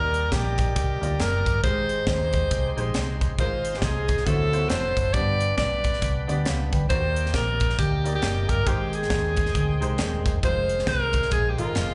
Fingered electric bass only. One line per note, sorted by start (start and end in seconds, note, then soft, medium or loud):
0.00 0.25 D#2 medium
0.32 0.69 A#1 medium
0.76 0.98 C2 medium
1.02 1.17 D2 medium
1.19 1.42 F#1 medium
1.46 1.61 G1 medium
1.63 2.01 G#1 medium
2.07 2.44 D#2 medium
2.51 2.73 C2 medium
2.77 2.92 A#1 medium
2.94 3.32 C2 medium
3.38 3.76 G#1 medium
3.82 4.19 C2 medium
4.26 4.64 D2 loud
4.70 4.92 F1 medium
4.97 5.12 F#1 medium
5.14 5.51 G1 medium
5.57 5.95 B1 medium
6.02 6.24 C2 medium
6.28 6.43 D2 medium
6.46 6.68 C#2 medium
6.73 6.88 D2 medium
6.90 7.27 D#2 medium
7.34 7.71 A#1 medium
7.79 8.16 D2 medium
8.22 8.45 F#1 medium
8.49 8.64 G1 medium
8.66 9.04 G#1 medium
9.10 9.48 D#2 medium
9.55 9.77 D2 medium
9.81 9.96 C2 medium
9.99 10.21 D#1 medium
10.26 10.41 E1 medium
10.43 10.81 F1 loud
10.87 11.25 C2 medium
11.32 11.54 A#1 loud
11.58 11.73 G#1 medium
11.75 11.94 F1 medium